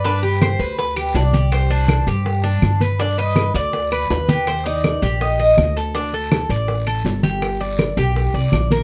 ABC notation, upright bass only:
X:1
M:4/4
L:1/8
Q:1/4=163
K:Cm
V:1 name="Upright bass" clef=bass
G,,3 D,,3 C,,2- | C,,3 G,,3 G,,2- | G,,3 D,,3 E,,2- | E,,3 B,,,3 D,,2- |
D,,3 =A,,,3 G,,,2- | G,,,3 =B,,,2 C,, _B,,,2 |]